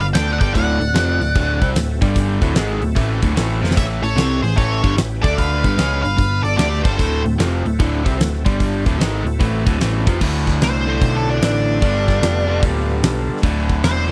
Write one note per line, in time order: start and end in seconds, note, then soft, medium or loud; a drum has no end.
0.00 0.13 G1 medium
0.00 0.12 G2 medium
0.00 0.12 D3 medium
0.00 0.53 B3 medium
0.00 0.53 D4 medium
0.00 0.53 F4 medium
0.00 0.53 A4 medium
0.00 0.06 F5 medium
0.00 open hi-hat medium
0.13 0.39 D2 medium
0.13 0.40 D3 medium
0.13 0.40 A3 medium
0.13 0.40 D4 medium
0.13 0.32 D5 medium
0.13 0.32 G5 medium
0.13 snare loud
0.13 open hi-hat medium
0.29 snare soft
0.33 0.39 D5 medium
0.33 0.39 F#5 medium
0.40 0.54 G1 loud
0.40 0.54 G2 medium
0.40 0.54 D3 medium
0.40 0.55 G3 medium
0.40 0.54 D5 medium
0.40 0.54 G5 medium
0.40 kick loud
0.40 open hi-hat medium
0.54 0.79 D1 loud
0.54 0.79 D2 medium
0.54 0.79 A2 loud
0.54 0.80 D3 medium
0.54 0.68 C#4 medium
0.54 0.68 F4 medium
0.54 0.68 G4 medium
0.54 0.68 A#4 medium
0.54 1.72 D5 medium
0.54 1.71 F#5 medium
0.54 kick loud
0.54 open hi-hat medium
0.67 2.00 C4 medium
0.67 2.00 E4 medium
0.67 2.00 F#4 medium
0.67 2.00 A4 medium
0.80 0.94 D1 medium
0.80 0.92 D2 medium
0.80 0.92 A2 medium
0.80 open hi-hat soft
0.94 1.19 F1 medium
0.94 1.20 F2 medium
0.94 1.20 C3 medium
0.94 1.20 F3 loud
0.94 snare loud
0.94 open hi-hat medium
1.21 1.34 D1 medium
1.21 1.32 D2 medium
1.21 1.32 A2 medium
1.21 open hi-hat medium
1.35 1.60 D1 medium
1.35 1.60 D2 medium
1.35 1.61 A2 loud
1.35 1.61 D3 loud
1.35 kick loud
1.35 open hi-hat medium
1.61 1.75 C2 medium
1.61 1.75 C3 medium
1.61 1.75 G3 medium
1.61 1.75 C4 medium
1.61 kick medium
1.61 open hi-hat soft
1.76 2.00 D1 medium
1.76 1.96 D2 medium
1.76 1.97 A2 medium
1.76 snare loud
1.76 open hi-hat medium
2.01 2.39 G1 medium
2.01 2.41 G2 medium
2.01 2.41 D3 medium
2.01 2.41 G3 medium
2.01 2.42 D4 medium
2.01 2.42 G4 medium
2.01 2.42 D5 medium
2.01 kick loud
2.01 open hi-hat medium
2.16 kick loud
2.16 open hi-hat medium
2.41 2.55 D1 medium
2.41 2.55 D2 medium
2.41 2.55 A2 loud
2.41 2.55 D3 loud
2.41 3.75 C4 medium
2.41 3.76 E4 medium
2.41 3.75 F#4 medium
2.41 3.75 A4 medium
2.41 kick medium
2.41 open hi-hat soft
2.55 2.80 G#1 medium
2.55 2.81 G#2 loud
2.55 2.81 D#3 medium
2.55 2.81 G#3 loud
2.55 snare loud
2.55 open hi-hat medium
2.81 2.95 D1 medium
2.81 2.93 D2 medium
2.81 2.93 A2 medium
2.81 open hi-hat medium
2.95 3.21 A1 medium
2.95 3.21 A2 medium
2.95 3.21 E3 loud
2.95 3.22 A3 medium
2.95 kick loud
2.95 open hi-hat medium
3.22 3.35 D1 medium
3.22 3.36 D2 medium
3.22 3.35 A2 medium
3.22 3.36 D3 medium
3.22 kick loud
3.22 open hi-hat medium
3.36 3.61 A1 medium
3.36 3.61 A2 medium
3.36 3.62 E3 medium
3.36 3.62 A3 medium
3.36 snare loud
3.36 open hi-hat medium
3.62 3.76 F1 medium
3.62 3.75 F2 medium
3.62 3.76 C3 medium
3.62 3.76 F3 medium
3.62 snare medium
3.71 snare medium
3.76 4.01 A1 medium
3.76 4.01 A2 medium
3.76 4.02 E3 medium
3.76 4.02 A3 loud
3.76 3.91 D4 medium
3.76 3.90 F4 medium
3.76 3.90 G#4 medium
3.76 3.90 C5 medium
3.76 3.85 C#5 medium
3.76 3.84 E5 loud
3.76 kick loud
3.76 open hi-hat medium
3.76 splash medium
3.89 5.21 C#4 medium
3.89 5.22 E4 medium
3.89 5.22 G4 medium
3.89 5.22 B4 medium
4.03 4.16 A1 medium
4.03 4.14 A2 medium
4.03 4.14 E3 medium
4.03 4.40 A4 medium
4.03 4.42 C#5 medium
4.03 open hi-hat medium
4.16 4.41 C2 medium
4.16 4.42 C3 medium
4.16 4.42 G3 loud
4.16 4.42 C4 loud
4.16 snare loud
4.16 open hi-hat medium
4.42 4.56 A1 medium
4.42 4.54 A2 medium
4.42 4.54 E3 medium
4.42 4.56 G#4 medium
4.42 4.57 C5 medium
4.42 open hi-hat soft
4.56 4.82 A1 medium
4.56 4.82 A2 medium
4.56 4.82 E3 medium
4.56 4.82 A3 medium
4.56 4.94 A4 medium
4.56 4.95 C#5 medium
4.56 kick loud
4.56 open hi-hat medium
4.83 4.97 G1 medium
4.83 4.97 G2 medium
4.83 4.97 D3 loud
4.83 4.97 G3 medium
4.83 kick loud
4.83 open hi-hat soft
4.97 5.22 A1 medium
4.97 5.18 A2 soft
4.97 5.18 E3 medium
4.97 snare loud
4.97 open hi-hat medium
5.22 5.61 D2 medium
5.22 5.63 D3 medium
5.22 5.63 A3 medium
5.22 5.64 A3 medium
5.22 5.63 D4 medium
5.22 5.36 A4 medium
5.22 5.63 A4 medium
5.22 5.36 D5 medium
5.22 5.63 D5 medium
5.22 kick loud
5.22 open hi-hat medium
5.38 6.00 B4 medium
5.38 6.01 F5 loud
5.38 kick loud
5.38 open hi-hat medium
5.64 5.77 G1 medium
5.64 5.77 G2 medium
5.64 5.77 D3 medium
5.64 5.77 G3 medium
5.64 6.98 B3 medium
5.64 6.98 F4 medium
5.64 6.97 A4 medium
5.64 kick medium
5.64 open hi-hat medium
5.78 6.02 C#2 loud
5.78 6.03 C#3 medium
5.78 6.03 G#3 medium
5.78 6.03 C#4 medium
5.78 snare loud
5.78 open hi-hat medium
6.02 6.17 G1 medium
6.02 6.15 G2 medium
6.02 6.15 D3 medium
6.02 6.40 B4 medium
6.02 6.40 F5 loud
6.02 open hi-hat medium
6.17 6.43 G1 medium
6.17 6.38 G2 medium
6.17 6.39 D3 medium
6.17 kick medium
6.17 open hi-hat medium
6.44 6.57 G1 medium
6.44 6.55 G2 medium
6.44 6.55 D3 medium
6.44 6.57 A4 medium
6.44 6.56 D5 medium
6.44 open hi-hat medium
6.57 6.82 D2 medium
6.57 6.83 D3 medium
6.57 6.83 A3 medium
6.57 6.83 D4 medium
6.57 6.82 G4 medium
6.57 6.83 D5 medium
6.57 snare loud
6.57 open hi-hat medium
6.73 snare soft
6.83 6.98 G1 medium
6.83 6.97 G2 medium
6.83 6.97 D3 medium
6.83 6.98 G3 medium
6.83 7.22 A4 medium
6.83 7.21 C5 medium
6.83 kick loud
6.83 open hi-hat medium
6.98 7.23 D1 loud
6.98 7.23 D2 medium
6.98 7.24 A2 loud
6.98 7.24 D3 loud
6.98 8.44 C4 medium
6.98 8.44 E4 medium
6.98 8.44 F#4 medium
6.98 8.44 A4 medium
6.98 kick loud
6.98 open hi-hat medium
7.25 7.38 D1 medium
7.25 7.36 D2 medium
7.25 7.36 A2 medium
7.25 open hi-hat medium
7.38 7.63 F1 loud
7.38 7.64 F2 medium
7.38 7.64 C3 loud
7.38 7.64 F3 medium
7.38 snare loud
7.38 open hi-hat medium
7.65 7.78 D1 medium
7.65 7.76 D2 medium
7.65 7.76 A2 medium
7.65 open hi-hat medium
7.79 8.04 D1 medium
7.79 8.04 D2 medium
7.79 8.04 A2 loud
7.79 8.05 D3 loud
7.79 kick loud
7.79 open hi-hat medium
8.05 8.18 C2 medium
8.05 8.18 C3 medium
8.05 8.19 G3 medium
8.05 8.19 C4 medium
8.05 kick loud
8.05 open hi-hat soft
8.19 8.44 D1 medium
8.19 8.40 D2 medium
8.19 8.40 A2 medium
8.19 snare loud
8.19 open hi-hat medium
8.34 snare soft
8.45 8.83 G1 loud
8.45 8.84 G2 medium
8.45 8.84 D3 medium
8.45 8.85 G3 medium
8.45 8.85 D4 medium
8.45 8.85 G4 medium
8.45 8.85 D5 medium
8.45 kick loud
8.45 open hi-hat medium
8.60 kick medium
8.60 open hi-hat medium
8.85 8.99 D1 medium
8.85 8.98 D2 medium
8.85 8.98 A2 medium
8.85 8.99 D3 loud
8.85 9.96 C4 medium
8.85 10.02 E4 medium
8.85 10.19 F#4 medium
8.85 10.11 A4 medium
8.85 kick loud
8.85 open hi-hat soft
8.98 9.24 G#1 medium
8.98 9.24 G#2 medium
8.98 9.24 D#3 medium
8.98 9.24 G#3 medium
8.98 snare loud
8.98 open hi-hat medium
9.25 9.39 D1 medium
9.25 9.36 D2 medium
9.25 9.37 A2 medium
9.25 open hi-hat medium
9.39 9.64 A1 medium
9.39 9.65 A2 medium
9.39 9.65 E3 loud
9.39 9.65 A3 medium
9.39 kick loud
9.39 open hi-hat medium
9.65 9.79 D1 medium
9.65 9.79 D2 medium
9.65 9.79 A2 medium
9.65 9.80 D3 medium
9.65 kick loud
9.65 open hi-hat medium
9.80 10.05 A1 medium
9.80 10.05 A2 medium
9.80 10.05 E3 medium
9.80 10.06 A3 medium
9.80 snare loud
9.80 open hi-hat medium
9.89 10.11 G3 medium
9.89 10.12 A3 medium
9.95 10.14 B3 medium
9.95 10.15 C4 medium
10.00 10.16 D4 medium
10.00 10.18 E4 medium
10.06 10.20 F1 loud
10.06 10.20 F2 medium
10.06 10.20 C3 medium
10.06 10.20 F3 medium
10.06 10.20 F4 medium
10.06 10.21 G4 medium
10.06 kick loud
10.06 open hi-hat medium
10.12 10.18 A4 medium
10.12 10.24 B4 medium
10.18 10.85 D2 medium
10.18 10.60 D2 medium
10.18 10.85 A2 loud
10.18 11.80 C4 medium
10.18 11.79 E4 medium
10.18 11.80 F#4 medium
10.18 11.79 A4 medium
10.18 10.25 C5 medium
10.18 kick loud
10.18 crash loud
10.22 10.85 D3 medium
10.47 kick medium
10.47 snare soft
10.61 11.00 C2 loud
10.61 11.14 C5 loud
10.61 snare medium
10.61 open hi-hat medium
10.86 11.81 D2 medium
10.86 11.81 A2 medium
10.86 11.80 D3 medium
11.02 11.40 B1 medium
11.02 kick loud
11.02 open hi-hat medium
11.17 11.28 A4 loud
11.30 11.42 D4 medium
11.42 11.81 A1 medium
11.42 12.60 D4 loud
11.42 snare loud
11.42 open hi-hat medium
11.82 12.21 G1 medium
11.82 12.46 G2 medium
11.82 12.47 D3 medium
11.82 12.46 G3 medium
11.82 13.41 B3 medium
11.82 13.41 D4 medium
11.82 13.41 F4 medium
11.82 13.41 A4 medium
11.82 kick loud
11.82 open hi-hat medium
12.08 kick medium
12.08 snare soft
12.22 12.61 F1 loud
12.22 snare loud
12.22 open hi-hat medium
12.47 13.42 G2 medium
12.47 13.42 D3 medium
12.47 13.41 G3 medium
12.63 13.01 D1 medium
12.63 kick loud
12.63 open hi-hat medium
13.03 13.27 B1 medium
13.03 snare loud
13.03 open hi-hat medium
13.30 muted picked electric bass stroke soft
13.37 snare soft
13.42 13.82 D1 medium
13.42 14.11 D2 medium
13.42 14.08 A2 loud
13.42 14.09 D3 loud
13.42 14.12 C4 medium
13.42 14.12 E4 medium
13.42 14.12 F#4 medium
13.42 14.12 A4 medium
13.42 kick loud
13.42 open hi-hat medium
13.69 kick medium
13.84 14.12 E1 loud
13.84 14.12 C5 loud
13.84 snare loud
13.84 open hi-hat medium